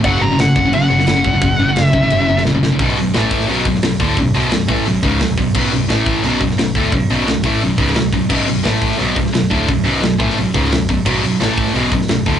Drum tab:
CC |x---x---x---x---|x---x---x-------|----------------|----------------|
HH |----------------|----------------|o-o-o-o-o-o-o-o-|o-o-o-o-o-o-o-o-|
SD |----o------oo---|----oo-----oo-o-|----o--o---oo---|----o-------o---|
BD |o-----o-------o-|o-----o---------|o-----o---o---o-|o-----o---o---o-|

CC |x---------------|----------------|x---------------|----------------|
HH |--o-o-o-o-o-o-o-|o-o-o-o-o-o-o-o-|--o-o-o-o-o-o-o-|o-o-o-o-o-o-o-o-|
SD |----o------oo---|----o------oo---|----o--o---oo---|----o--o---oo---|
BD |o-----o---o---o-|o-----o---o---o-|o-----o---o---o-|o-----o---o---o-|

CC |x---------------|
HH |--o-o-o-o-o-o-o-|
SD |----o--o---oo---|
BD |o-----o---o---o-|